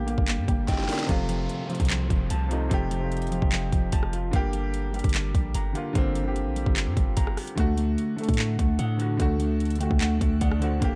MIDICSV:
0, 0, Header, 1, 8, 480
1, 0, Start_track
1, 0, Key_signature, -2, "minor"
1, 0, Tempo, 405405
1, 1289, Time_signature, 4, 2, 24, 8
1, 12968, End_track
2, 0, Start_track
2, 0, Title_t, "Ambient pad"
2, 0, Program_c, 0, 92
2, 8968, Note_on_c, 0, 62, 76
2, 8968, Note_on_c, 0, 78, 89
2, 8969, Note_on_c, 0, 50, 82
2, 8969, Note_on_c, 0, 69, 75
2, 12770, Note_off_c, 0, 62, 0
2, 12770, Note_off_c, 0, 78, 0
2, 12771, Note_off_c, 0, 50, 0
2, 12771, Note_off_c, 0, 69, 0
2, 12809, Note_on_c, 0, 55, 80
2, 12809, Note_on_c, 0, 62, 76
2, 12809, Note_on_c, 0, 79, 89
2, 12810, Note_on_c, 0, 70, 74
2, 12968, Note_off_c, 0, 55, 0
2, 12968, Note_off_c, 0, 62, 0
2, 12968, Note_off_c, 0, 70, 0
2, 12968, Note_off_c, 0, 79, 0
2, 12968, End_track
3, 0, Start_track
3, 0, Title_t, "Grand piano"
3, 0, Program_c, 1, 0
3, 0, Control_c, 1, 64, 127
3, 0, Note_on_c, 1, 50, 102
3, 0, Note_on_c, 1, 58, 93
3, 0, Note_on_c, 1, 62, 96
3, 0, Note_on_c, 1, 67, 127
3, 61, Note_off_c, 1, 50, 0
3, 61, Note_on_c, 1, 50, 84
3, 86, Note_off_c, 1, 58, 0
3, 86, Note_on_c, 1, 58, 77
3, 112, Note_off_c, 1, 67, 0
3, 112, Note_on_c, 1, 67, 91
3, 572, Note_on_c, 1, 79, 73
3, 765, Note_off_c, 1, 50, 0
3, 777, Note_off_c, 1, 58, 0
3, 790, Note_off_c, 1, 67, 0
3, 794, Note_off_c, 1, 79, 0
3, 809, Note_on_c, 1, 75, 75
3, 1027, Note_on_c, 1, 50, 90
3, 1032, Note_off_c, 1, 75, 0
3, 1052, Note_on_c, 1, 74, 77
3, 1053, Note_on_c, 1, 58, 80
3, 1078, Note_on_c, 1, 67, 94
3, 1211, Note_off_c, 1, 50, 0
3, 1223, Note_off_c, 1, 58, 0
3, 1236, Note_off_c, 1, 67, 0
3, 1259, Note_on_c, 1, 48, 117
3, 1274, Note_off_c, 1, 74, 0
3, 1285, Note_on_c, 1, 57, 104
3, 1303, Control_c, 1, 64, 0
3, 1310, Note_off_c, 1, 62, 0
3, 1311, Note_on_c, 1, 65, 127
3, 1480, Control_c, 1, 64, 127
3, 1792, Note_off_c, 1, 48, 0
3, 1805, Note_off_c, 1, 57, 0
3, 1817, Note_off_c, 1, 65, 0
3, 1989, Note_on_c, 1, 48, 80
3, 2016, Note_on_c, 1, 57, 72
3, 2041, Note_on_c, 1, 65, 87
3, 2689, Note_off_c, 1, 48, 0
3, 2702, Note_off_c, 1, 57, 0
3, 2715, Note_off_c, 1, 65, 0
3, 2943, Note_on_c, 1, 48, 90
3, 2969, Note_on_c, 1, 57, 88
3, 2995, Note_on_c, 1, 63, 101
3, 3128, Note_off_c, 1, 48, 0
3, 3141, Note_off_c, 1, 57, 0
3, 3155, Note_off_c, 1, 63, 0
3, 3191, Note_on_c, 1, 48, 119
3, 3217, Note_on_c, 1, 57, 107
3, 3243, Note_on_c, 1, 67, 124
3, 3459, Note_off_c, 1, 48, 0
3, 3472, Note_off_c, 1, 57, 0
3, 3485, Note_off_c, 1, 67, 0
3, 3543, Note_on_c, 1, 48, 90
3, 3570, Note_on_c, 1, 57, 83
3, 3596, Note_on_c, 1, 65, 92
3, 4246, Note_off_c, 1, 48, 0
3, 4259, Note_off_c, 1, 57, 0
3, 4272, Note_off_c, 1, 65, 0
3, 5107, Note_on_c, 1, 50, 116
3, 5132, Note_on_c, 1, 58, 114
3, 5144, Control_c, 1, 64, 0
3, 5158, Note_on_c, 1, 67, 127
3, 5333, Control_c, 1, 64, 127
3, 5635, Note_off_c, 1, 50, 0
3, 5648, Note_off_c, 1, 58, 0
3, 5661, Note_off_c, 1, 67, 0
3, 5821, Note_on_c, 1, 50, 78
3, 5847, Note_on_c, 1, 58, 73
3, 5873, Note_on_c, 1, 67, 91
3, 6525, Note_off_c, 1, 50, 0
3, 6538, Note_off_c, 1, 58, 0
3, 6551, Note_off_c, 1, 67, 0
3, 6783, Note_on_c, 1, 50, 90
3, 6809, Note_on_c, 1, 58, 89
3, 6835, Note_on_c, 1, 65, 105
3, 6969, Note_off_c, 1, 50, 0
3, 6981, Note_off_c, 1, 58, 0
3, 6995, Note_off_c, 1, 65, 0
3, 7022, Note_on_c, 1, 50, 117
3, 7048, Note_on_c, 1, 58, 99
3, 7073, Note_on_c, 1, 60, 127
3, 7294, Note_off_c, 1, 50, 0
3, 7307, Note_off_c, 1, 58, 0
3, 7320, Note_off_c, 1, 60, 0
3, 7380, Note_on_c, 1, 50, 96
3, 7406, Note_on_c, 1, 58, 84
3, 7432, Note_on_c, 1, 67, 100
3, 8085, Note_off_c, 1, 50, 0
3, 8097, Note_off_c, 1, 58, 0
3, 8111, Note_off_c, 1, 67, 0
3, 8945, Note_on_c, 1, 50, 113
3, 8971, Note_on_c, 1, 57, 106
3, 8982, Control_c, 1, 64, 0
3, 8996, Note_on_c, 1, 66, 122
3, 9184, Control_c, 1, 64, 127
3, 9474, Note_off_c, 1, 50, 0
3, 9488, Note_off_c, 1, 57, 0
3, 9500, Note_off_c, 1, 66, 0
3, 9666, Note_on_c, 1, 50, 93
3, 9691, Note_on_c, 1, 57, 78
3, 9717, Note_on_c, 1, 69, 96
3, 10367, Note_off_c, 1, 50, 0
3, 10380, Note_off_c, 1, 57, 0
3, 10393, Note_off_c, 1, 69, 0
3, 10622, Note_on_c, 1, 50, 83
3, 10649, Note_on_c, 1, 57, 69
3, 10674, Note_on_c, 1, 66, 101
3, 10808, Note_off_c, 1, 50, 0
3, 10821, Note_off_c, 1, 57, 0
3, 10834, Note_off_c, 1, 66, 0
3, 10860, Note_on_c, 1, 50, 111
3, 10885, Note_on_c, 1, 57, 98
3, 10911, Note_on_c, 1, 66, 122
3, 11392, Note_off_c, 1, 50, 0
3, 11404, Note_off_c, 1, 57, 0
3, 11417, Note_off_c, 1, 66, 0
3, 11585, Note_on_c, 1, 50, 98
3, 11610, Note_on_c, 1, 57, 84
3, 11611, Note_on_c, 1, 79, 76
3, 11637, Note_on_c, 1, 66, 96
3, 11833, Note_off_c, 1, 79, 0
3, 11850, Note_on_c, 1, 78, 88
3, 12287, Note_off_c, 1, 50, 0
3, 12296, Note_off_c, 1, 78, 0
3, 12300, Note_off_c, 1, 57, 0
3, 12313, Note_off_c, 1, 66, 0
3, 12330, Note_on_c, 1, 74, 79
3, 12541, Note_on_c, 1, 50, 97
3, 12553, Note_off_c, 1, 74, 0
3, 12567, Note_on_c, 1, 57, 79
3, 12567, Note_on_c, 1, 72, 76
3, 12593, Note_on_c, 1, 66, 105
3, 12728, Note_off_c, 1, 50, 0
3, 12740, Note_off_c, 1, 57, 0
3, 12754, Note_off_c, 1, 66, 0
3, 12785, Note_on_c, 1, 50, 110
3, 12791, Note_off_c, 1, 72, 0
3, 12811, Note_on_c, 1, 58, 104
3, 12826, Control_c, 1, 64, 0
3, 12837, Note_on_c, 1, 67, 120
3, 12968, Note_off_c, 1, 50, 0
3, 12968, Note_off_c, 1, 58, 0
3, 12968, Note_off_c, 1, 67, 0
3, 12968, End_track
4, 0, Start_track
4, 0, Title_t, "Clean electric guitar"
4, 0, Program_c, 2, 27
4, 0, Note_on_c, 2, 70, 84
4, 0, Note_on_c, 2, 79, 100
4, 80, Note_on_c, 2, 58, 83
4, 305, Note_off_c, 2, 58, 0
4, 319, Note_on_c, 2, 58, 72
4, 329, Note_off_c, 2, 79, 0
4, 560, Note_off_c, 2, 58, 0
4, 566, Note_off_c, 2, 70, 0
4, 574, Note_on_c, 2, 58, 72
4, 809, Note_on_c, 2, 79, 103
4, 1040, Note_on_c, 2, 70, 81
4, 1284, Note_off_c, 2, 70, 0
4, 1288, Note_on_c, 2, 53, 89
4, 1289, Note_off_c, 2, 79, 0
4, 1292, Note_off_c, 2, 58, 0
4, 1515, Note_off_c, 2, 53, 0
4, 1529, Note_on_c, 2, 53, 78
4, 1995, Note_off_c, 2, 53, 0
4, 2009, Note_on_c, 2, 53, 92
4, 2234, Note_off_c, 2, 53, 0
4, 2249, Note_on_c, 2, 53, 82
4, 2476, Note_off_c, 2, 53, 0
4, 2490, Note_on_c, 2, 53, 68
4, 2731, Note_on_c, 2, 81, 102
4, 2975, Note_on_c, 2, 65, 89
4, 3194, Note_off_c, 2, 53, 0
4, 3209, Note_on_c, 2, 53, 88
4, 3434, Note_off_c, 2, 53, 0
4, 3448, Note_on_c, 2, 53, 80
4, 3913, Note_off_c, 2, 53, 0
4, 3927, Note_on_c, 2, 53, 96
4, 4153, Note_off_c, 2, 53, 0
4, 4168, Note_on_c, 2, 53, 72
4, 4170, Note_off_c, 2, 81, 0
4, 4396, Note_off_c, 2, 53, 0
4, 4411, Note_on_c, 2, 53, 70
4, 4412, Note_off_c, 2, 65, 0
4, 4649, Note_on_c, 2, 81, 100
4, 4893, Note_on_c, 2, 65, 85
4, 5124, Note_on_c, 2, 55, 89
4, 5129, Note_off_c, 2, 81, 0
4, 5130, Note_off_c, 2, 53, 0
4, 5131, Note_off_c, 2, 65, 0
4, 5358, Note_off_c, 2, 55, 0
4, 5372, Note_on_c, 2, 55, 78
4, 5833, Note_off_c, 2, 55, 0
4, 5847, Note_on_c, 2, 55, 96
4, 6072, Note_off_c, 2, 55, 0
4, 6086, Note_on_c, 2, 55, 78
4, 6324, Note_off_c, 2, 55, 0
4, 6338, Note_on_c, 2, 55, 74
4, 6573, Note_on_c, 2, 82, 104
4, 6806, Note_on_c, 2, 67, 88
4, 7031, Note_off_c, 2, 55, 0
4, 7045, Note_on_c, 2, 55, 83
4, 7270, Note_off_c, 2, 55, 0
4, 7284, Note_on_c, 2, 55, 75
4, 7751, Note_off_c, 2, 55, 0
4, 7766, Note_on_c, 2, 55, 93
4, 7990, Note_off_c, 2, 55, 0
4, 8005, Note_on_c, 2, 55, 73
4, 8011, Note_off_c, 2, 82, 0
4, 8239, Note_off_c, 2, 55, 0
4, 8248, Note_off_c, 2, 67, 0
4, 8253, Note_on_c, 2, 55, 70
4, 8488, Note_on_c, 2, 82, 105
4, 8737, Note_on_c, 2, 67, 78
4, 8967, Note_on_c, 2, 57, 95
4, 8968, Note_off_c, 2, 82, 0
4, 8971, Note_off_c, 2, 55, 0
4, 8973, Note_off_c, 2, 67, 0
4, 9195, Note_off_c, 2, 57, 0
4, 9209, Note_on_c, 2, 57, 74
4, 9676, Note_off_c, 2, 57, 0
4, 9690, Note_on_c, 2, 57, 87
4, 9917, Note_off_c, 2, 57, 0
4, 9932, Note_on_c, 2, 57, 76
4, 10160, Note_off_c, 2, 57, 0
4, 10174, Note_on_c, 2, 57, 73
4, 10409, Note_on_c, 2, 78, 111
4, 10642, Note_on_c, 2, 69, 86
4, 10874, Note_off_c, 2, 57, 0
4, 10888, Note_on_c, 2, 57, 87
4, 11108, Note_off_c, 2, 57, 0
4, 11122, Note_on_c, 2, 57, 83
4, 11591, Note_off_c, 2, 57, 0
4, 11605, Note_on_c, 2, 57, 91
4, 11838, Note_off_c, 2, 57, 0
4, 11849, Note_off_c, 2, 78, 0
4, 11852, Note_on_c, 2, 57, 79
4, 12074, Note_off_c, 2, 57, 0
4, 12085, Note_off_c, 2, 69, 0
4, 12088, Note_on_c, 2, 57, 74
4, 12331, Note_on_c, 2, 78, 111
4, 12572, Note_on_c, 2, 69, 90
4, 12804, Note_off_c, 2, 57, 0
4, 12809, Note_on_c, 2, 58, 94
4, 12810, Note_off_c, 2, 78, 0
4, 12811, Note_off_c, 2, 69, 0
4, 12968, Note_off_c, 2, 58, 0
4, 12968, End_track
5, 0, Start_track
5, 0, Title_t, "808-style bass"
5, 0, Program_c, 3, 38
5, 0, Note_on_c, 3, 34, 97
5, 197, Note_off_c, 3, 34, 0
5, 210, Note_on_c, 3, 31, 105
5, 448, Note_on_c, 3, 43, 99
5, 466, Note_off_c, 3, 31, 0
5, 562, Note_off_c, 3, 43, 0
5, 570, Note_on_c, 3, 31, 102
5, 800, Note_off_c, 3, 31, 0
5, 810, Note_on_c, 3, 31, 110
5, 1040, Note_off_c, 3, 31, 0
5, 1289, Note_on_c, 3, 29, 114
5, 1750, Note_off_c, 3, 29, 0
5, 2130, Note_on_c, 3, 36, 102
5, 2475, Note_off_c, 3, 36, 0
5, 2489, Note_on_c, 3, 29, 111
5, 2720, Note_off_c, 3, 29, 0
5, 2728, Note_on_c, 3, 36, 110
5, 3189, Note_off_c, 3, 36, 0
5, 3209, Note_on_c, 3, 29, 112
5, 4016, Note_off_c, 3, 29, 0
5, 4050, Note_on_c, 3, 29, 103
5, 4395, Note_off_c, 3, 29, 0
5, 4410, Note_on_c, 3, 29, 103
5, 4640, Note_off_c, 3, 29, 0
5, 4649, Note_on_c, 3, 29, 112
5, 5110, Note_off_c, 3, 29, 0
5, 5129, Note_on_c, 3, 31, 109
5, 5935, Note_off_c, 3, 31, 0
5, 5969, Note_on_c, 3, 31, 104
5, 6315, Note_off_c, 3, 31, 0
5, 6329, Note_on_c, 3, 34, 112
5, 6559, Note_off_c, 3, 34, 0
5, 6568, Note_on_c, 3, 31, 114
5, 6799, Note_off_c, 3, 31, 0
5, 7049, Note_on_c, 3, 31, 105
5, 7648, Note_on_c, 3, 34, 99
5, 7666, Note_off_c, 3, 31, 0
5, 7876, Note_off_c, 3, 34, 0
5, 7889, Note_on_c, 3, 31, 104
5, 8128, Note_on_c, 3, 43, 101
5, 8146, Note_off_c, 3, 31, 0
5, 8242, Note_off_c, 3, 43, 0
5, 8249, Note_on_c, 3, 31, 111
5, 8480, Note_off_c, 3, 31, 0
5, 8490, Note_on_c, 3, 31, 109
5, 8720, Note_off_c, 3, 31, 0
5, 8969, Note_on_c, 3, 38, 112
5, 9430, Note_off_c, 3, 38, 0
5, 9810, Note_on_c, 3, 45, 101
5, 10155, Note_off_c, 3, 45, 0
5, 10170, Note_on_c, 3, 38, 108
5, 10400, Note_off_c, 3, 38, 0
5, 10409, Note_on_c, 3, 45, 115
5, 10870, Note_off_c, 3, 45, 0
5, 10889, Note_on_c, 3, 38, 113
5, 11695, Note_off_c, 3, 38, 0
5, 11729, Note_on_c, 3, 38, 107
5, 12075, Note_off_c, 3, 38, 0
5, 12089, Note_on_c, 3, 38, 106
5, 12319, Note_off_c, 3, 38, 0
5, 12329, Note_on_c, 3, 38, 111
5, 12790, Note_off_c, 3, 38, 0
5, 12809, Note_on_c, 3, 31, 113
5, 12968, Note_off_c, 3, 31, 0
5, 12968, End_track
6, 0, Start_track
6, 0, Title_t, "Downlifter"
6, 0, Program_c, 4, 103
6, 1289, Note_on_c, 4, 60, 84
6, 5129, Note_off_c, 4, 60, 0
6, 12968, End_track
7, 0, Start_track
7, 0, Title_t, "Swell"
7, 0, Program_c, 5, 103
7, 0, Note_on_c, 5, 60, 81
7, 1289, Note_off_c, 5, 60, 0
7, 12968, End_track
8, 0, Start_track
8, 0, Title_t, "Drums"
8, 91, Note_on_c, 9, 42, 72
8, 209, Note_off_c, 9, 42, 0
8, 210, Note_on_c, 9, 36, 96
8, 327, Note_on_c, 9, 42, 83
8, 329, Note_off_c, 9, 36, 0
8, 330, Note_on_c, 9, 39, 108
8, 445, Note_off_c, 9, 42, 0
8, 448, Note_off_c, 9, 39, 0
8, 570, Note_on_c, 9, 36, 97
8, 572, Note_on_c, 9, 42, 71
8, 688, Note_off_c, 9, 36, 0
8, 691, Note_off_c, 9, 42, 0
8, 807, Note_on_c, 9, 42, 101
8, 810, Note_on_c, 9, 36, 90
8, 810, Note_on_c, 9, 38, 60
8, 870, Note_off_c, 9, 38, 0
8, 870, Note_on_c, 9, 38, 60
8, 925, Note_off_c, 9, 42, 0
8, 928, Note_off_c, 9, 36, 0
8, 929, Note_off_c, 9, 38, 0
8, 929, Note_on_c, 9, 38, 76
8, 990, Note_off_c, 9, 38, 0
8, 990, Note_on_c, 9, 38, 70
8, 1050, Note_off_c, 9, 38, 0
8, 1050, Note_on_c, 9, 38, 86
8, 1050, Note_on_c, 9, 42, 47
8, 1052, Note_on_c, 9, 46, 81
8, 1109, Note_off_c, 9, 38, 0
8, 1109, Note_on_c, 9, 38, 82
8, 1168, Note_off_c, 9, 42, 0
8, 1169, Note_off_c, 9, 38, 0
8, 1169, Note_on_c, 9, 38, 99
8, 1169, Note_on_c, 9, 42, 75
8, 1170, Note_off_c, 9, 46, 0
8, 1229, Note_off_c, 9, 38, 0
8, 1229, Note_on_c, 9, 38, 92
8, 1287, Note_off_c, 9, 42, 0
8, 1289, Note_on_c, 9, 36, 100
8, 1289, Note_on_c, 9, 42, 88
8, 1347, Note_off_c, 9, 38, 0
8, 1407, Note_off_c, 9, 36, 0
8, 1407, Note_off_c, 9, 42, 0
8, 1526, Note_on_c, 9, 42, 83
8, 1644, Note_off_c, 9, 42, 0
8, 1769, Note_on_c, 9, 42, 61
8, 1887, Note_off_c, 9, 42, 0
8, 2009, Note_on_c, 9, 42, 47
8, 2068, Note_off_c, 9, 42, 0
8, 2068, Note_on_c, 9, 42, 57
8, 2129, Note_off_c, 9, 42, 0
8, 2129, Note_on_c, 9, 42, 71
8, 2130, Note_on_c, 9, 36, 98
8, 2190, Note_off_c, 9, 42, 0
8, 2190, Note_on_c, 9, 42, 82
8, 2246, Note_off_c, 9, 42, 0
8, 2246, Note_on_c, 9, 42, 83
8, 2248, Note_off_c, 9, 36, 0
8, 2249, Note_on_c, 9, 39, 109
8, 2364, Note_off_c, 9, 42, 0
8, 2367, Note_off_c, 9, 39, 0
8, 2489, Note_on_c, 9, 36, 100
8, 2491, Note_on_c, 9, 42, 73
8, 2608, Note_off_c, 9, 36, 0
8, 2610, Note_off_c, 9, 42, 0
8, 2725, Note_on_c, 9, 42, 104
8, 2844, Note_off_c, 9, 42, 0
8, 2971, Note_on_c, 9, 42, 75
8, 3090, Note_off_c, 9, 42, 0
8, 3209, Note_on_c, 9, 36, 104
8, 3209, Note_on_c, 9, 42, 87
8, 3328, Note_off_c, 9, 36, 0
8, 3328, Note_off_c, 9, 42, 0
8, 3447, Note_on_c, 9, 42, 80
8, 3565, Note_off_c, 9, 42, 0
8, 3690, Note_on_c, 9, 42, 54
8, 3750, Note_off_c, 9, 42, 0
8, 3750, Note_on_c, 9, 42, 54
8, 3810, Note_off_c, 9, 42, 0
8, 3810, Note_on_c, 9, 42, 53
8, 3870, Note_off_c, 9, 42, 0
8, 3870, Note_on_c, 9, 42, 54
8, 3930, Note_off_c, 9, 42, 0
8, 3930, Note_on_c, 9, 42, 76
8, 4048, Note_off_c, 9, 42, 0
8, 4050, Note_on_c, 9, 36, 97
8, 4166, Note_on_c, 9, 42, 88
8, 4168, Note_off_c, 9, 36, 0
8, 4169, Note_on_c, 9, 39, 108
8, 4285, Note_off_c, 9, 42, 0
8, 4288, Note_off_c, 9, 39, 0
8, 4409, Note_on_c, 9, 36, 101
8, 4411, Note_on_c, 9, 42, 78
8, 4528, Note_off_c, 9, 36, 0
8, 4530, Note_off_c, 9, 42, 0
8, 4645, Note_on_c, 9, 42, 102
8, 4649, Note_on_c, 9, 36, 92
8, 4763, Note_off_c, 9, 42, 0
8, 4767, Note_off_c, 9, 36, 0
8, 4769, Note_on_c, 9, 37, 93
8, 4887, Note_off_c, 9, 37, 0
8, 4891, Note_on_c, 9, 42, 78
8, 5009, Note_off_c, 9, 42, 0
8, 5129, Note_on_c, 9, 36, 103
8, 5129, Note_on_c, 9, 42, 91
8, 5247, Note_off_c, 9, 36, 0
8, 5247, Note_off_c, 9, 42, 0
8, 5366, Note_on_c, 9, 42, 83
8, 5484, Note_off_c, 9, 42, 0
8, 5608, Note_on_c, 9, 42, 63
8, 5727, Note_off_c, 9, 42, 0
8, 5850, Note_on_c, 9, 42, 45
8, 5909, Note_off_c, 9, 42, 0
8, 5909, Note_on_c, 9, 42, 58
8, 5969, Note_off_c, 9, 42, 0
8, 5969, Note_on_c, 9, 36, 94
8, 5969, Note_on_c, 9, 42, 70
8, 6028, Note_off_c, 9, 42, 0
8, 6028, Note_on_c, 9, 42, 82
8, 6085, Note_off_c, 9, 42, 0
8, 6085, Note_on_c, 9, 42, 88
8, 6088, Note_off_c, 9, 36, 0
8, 6089, Note_on_c, 9, 39, 112
8, 6204, Note_off_c, 9, 42, 0
8, 6207, Note_off_c, 9, 39, 0
8, 6329, Note_on_c, 9, 36, 102
8, 6331, Note_on_c, 9, 42, 74
8, 6448, Note_off_c, 9, 36, 0
8, 6450, Note_off_c, 9, 42, 0
8, 6565, Note_on_c, 9, 42, 106
8, 6683, Note_off_c, 9, 42, 0
8, 6810, Note_on_c, 9, 42, 80
8, 6929, Note_off_c, 9, 42, 0
8, 7048, Note_on_c, 9, 42, 89
8, 7049, Note_on_c, 9, 36, 107
8, 7167, Note_off_c, 9, 36, 0
8, 7167, Note_off_c, 9, 42, 0
8, 7286, Note_on_c, 9, 42, 80
8, 7405, Note_off_c, 9, 42, 0
8, 7529, Note_on_c, 9, 42, 64
8, 7647, Note_off_c, 9, 42, 0
8, 7770, Note_on_c, 9, 42, 73
8, 7888, Note_off_c, 9, 42, 0
8, 7889, Note_on_c, 9, 36, 95
8, 8006, Note_on_c, 9, 42, 87
8, 8008, Note_off_c, 9, 36, 0
8, 8009, Note_on_c, 9, 39, 104
8, 8124, Note_off_c, 9, 42, 0
8, 8127, Note_off_c, 9, 39, 0
8, 8249, Note_on_c, 9, 36, 100
8, 8252, Note_on_c, 9, 42, 74
8, 8368, Note_off_c, 9, 36, 0
8, 8370, Note_off_c, 9, 42, 0
8, 8486, Note_on_c, 9, 42, 105
8, 8489, Note_on_c, 9, 36, 94
8, 8604, Note_off_c, 9, 42, 0
8, 8608, Note_off_c, 9, 36, 0
8, 8609, Note_on_c, 9, 37, 97
8, 8728, Note_off_c, 9, 37, 0
8, 8729, Note_on_c, 9, 37, 74
8, 8730, Note_on_c, 9, 42, 47
8, 8732, Note_on_c, 9, 46, 82
8, 8848, Note_off_c, 9, 37, 0
8, 8848, Note_off_c, 9, 42, 0
8, 8850, Note_off_c, 9, 46, 0
8, 8850, Note_on_c, 9, 42, 79
8, 8968, Note_off_c, 9, 42, 0
8, 8969, Note_on_c, 9, 36, 105
8, 8969, Note_on_c, 9, 42, 89
8, 9088, Note_off_c, 9, 36, 0
8, 9088, Note_off_c, 9, 42, 0
8, 9206, Note_on_c, 9, 42, 82
8, 9324, Note_off_c, 9, 42, 0
8, 9450, Note_on_c, 9, 42, 63
8, 9568, Note_off_c, 9, 42, 0
8, 9690, Note_on_c, 9, 42, 47
8, 9750, Note_off_c, 9, 42, 0
8, 9750, Note_on_c, 9, 42, 56
8, 9810, Note_off_c, 9, 42, 0
8, 9810, Note_on_c, 9, 36, 96
8, 9810, Note_on_c, 9, 42, 70
8, 9870, Note_off_c, 9, 42, 0
8, 9870, Note_on_c, 9, 42, 80
8, 9926, Note_off_c, 9, 42, 0
8, 9926, Note_on_c, 9, 42, 86
8, 9929, Note_off_c, 9, 36, 0
8, 9929, Note_on_c, 9, 39, 108
8, 10044, Note_off_c, 9, 42, 0
8, 10048, Note_off_c, 9, 39, 0
8, 10170, Note_on_c, 9, 36, 101
8, 10172, Note_on_c, 9, 42, 75
8, 10288, Note_off_c, 9, 36, 0
8, 10290, Note_off_c, 9, 42, 0
8, 10406, Note_on_c, 9, 42, 105
8, 10524, Note_off_c, 9, 42, 0
8, 10651, Note_on_c, 9, 42, 74
8, 10769, Note_off_c, 9, 42, 0
8, 10889, Note_on_c, 9, 36, 105
8, 10889, Note_on_c, 9, 42, 88
8, 11007, Note_off_c, 9, 36, 0
8, 11007, Note_off_c, 9, 42, 0
8, 11126, Note_on_c, 9, 42, 80
8, 11244, Note_off_c, 9, 42, 0
8, 11370, Note_on_c, 9, 42, 55
8, 11430, Note_off_c, 9, 42, 0
8, 11430, Note_on_c, 9, 42, 54
8, 11490, Note_off_c, 9, 42, 0
8, 11490, Note_on_c, 9, 42, 54
8, 11550, Note_off_c, 9, 42, 0
8, 11550, Note_on_c, 9, 42, 53
8, 11610, Note_off_c, 9, 42, 0
8, 11610, Note_on_c, 9, 42, 77
8, 11728, Note_off_c, 9, 42, 0
8, 11730, Note_on_c, 9, 36, 98
8, 11845, Note_on_c, 9, 42, 84
8, 11848, Note_off_c, 9, 36, 0
8, 11849, Note_on_c, 9, 39, 110
8, 11964, Note_off_c, 9, 42, 0
8, 11967, Note_off_c, 9, 39, 0
8, 12089, Note_on_c, 9, 36, 100
8, 12091, Note_on_c, 9, 42, 74
8, 12208, Note_off_c, 9, 36, 0
8, 12210, Note_off_c, 9, 42, 0
8, 12326, Note_on_c, 9, 42, 107
8, 12329, Note_on_c, 9, 36, 93
8, 12444, Note_off_c, 9, 42, 0
8, 12448, Note_off_c, 9, 36, 0
8, 12450, Note_on_c, 9, 37, 95
8, 12568, Note_off_c, 9, 37, 0
8, 12572, Note_on_c, 9, 42, 79
8, 12690, Note_off_c, 9, 42, 0
8, 12809, Note_on_c, 9, 36, 104
8, 12810, Note_on_c, 9, 42, 89
8, 12928, Note_off_c, 9, 36, 0
8, 12928, Note_off_c, 9, 42, 0
8, 12968, End_track
0, 0, End_of_file